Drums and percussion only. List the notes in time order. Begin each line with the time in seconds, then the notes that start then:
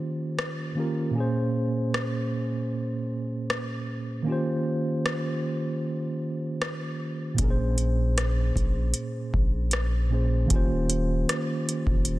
0.39 cross-stick
1.94 cross-stick
3.50 cross-stick
5.06 cross-stick
6.62 cross-stick
7.38 kick, closed hi-hat
7.78 closed hi-hat
8.18 cross-stick, closed hi-hat
8.56 kick, closed hi-hat
8.94 closed hi-hat
9.34 kick
9.71 cross-stick, closed hi-hat
10.50 kick, closed hi-hat
10.90 closed hi-hat
11.29 cross-stick, closed hi-hat
11.69 closed hi-hat
11.87 kick
12.05 closed hi-hat